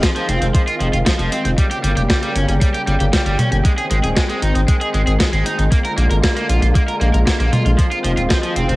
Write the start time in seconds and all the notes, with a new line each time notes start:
Already playing: D#3 G#3 C4 F4
0.03 F3, kick, snare, closed hi-hat
0.16 F3, closed hi-hat
0.29 F1 C4, closed hi-hat
0.42 F1 C4, closed hi-hat
0.55 F3, kick, closed hi-hat
0.68 F4, closed hi-hat
0.80 F1 F3, closed hi-hat
0.93 F1 F4, closed hi-hat
1.06 F3, kick, snare, closed hi-hat
1.19 F1 F3, closed hi-hat
1.32 C4, closed hi-hat
1.45 F1 C4, closed hi-hat
1.58 C#3 G3 A#3 G5, kick, closed hi-hat
1.71 G4, closed hi-hat
1.84 G1 G3, closed hi-hat
1.97 F1 G4, closed hi-hat
2.10 G3, kick, snare, closed hi-hat
2.23 G3, closed hi-hat
2.35 G1 C#4, closed hi-hat
2.49 G1 C#4, closed hi-hat
2.61 G3, kick, closed hi-hat
2.74 G4, closed hi-hat
2.87 G1 G3, closed hi-hat
3.00 G1 G4, closed hi-hat
3.13 G3, kick, snare, closed hi-hat
3.26 G1 G3, closed hi-hat
3.39 C#4, closed hi-hat, mid tom
3.52 G1 C#4, closed hi-hat
3.65 D#3 G#3 C4, kick, closed hi-hat
3.78 G#4, closed hi-hat
3.91 G#1 G#3, closed hi-hat
4.04 D#1 G#4, closed hi-hat
4.16 G#3, kick, snare, closed hi-hat
4.29 G#3, closed hi-hat
4.42 G#1 D#4, closed hi-hat
4.55 G#1 D#4, closed hi-hat
4.68 G#3, kick, closed hi-hat
4.81 G#4, closed hi-hat
4.94 G#1 G#3, closed hi-hat
5.07 G#1 G#4, closed hi-hat
5.20 G#3, kick, snare, closed hi-hat
5.33 G#1 G#3, closed hi-hat
5.46 D#4, closed hi-hat
5.59 G#1 D#4, closed hi-hat
5.72 D3 A#3 F4, kick, closed hi-hat
5.85 A#4, closed hi-hat
5.98 A#1 A#3, closed hi-hat
6.11 G#1 A#4, closed hi-hat
6.23 A#3, kick, snare, closed hi-hat
6.36 A#3, closed hi-hat
6.49 A#1 F4, closed hi-hat
6.62 A#1 F4, closed hi-hat
6.75 A#3, kick, closed hi-hat
6.88 A#4, closed hi-hat
7.01 A#1 A#3, closed hi-hat
7.14 A#1 A#4, closed hi-hat
7.27 A#3, kick, snare, closed hi-hat
7.40 A#1 A#3, closed hi-hat
7.53 F4, closed hi-hat, mid tom
7.66 A#1 F4, closed hi-hat
7.79 D#3 F3 C4, kick, closed hi-hat
7.91 F4, closed hi-hat
8.04 F1 F3, closed hi-hat
8.17 D#1 F4, closed hi-hat
8.30 F3, kick, snare, closed hi-hat
8.43 F3, closed hi-hat
8.56 F1 C4, closed hi-hat
8.69 F1 C4, closed hi-hat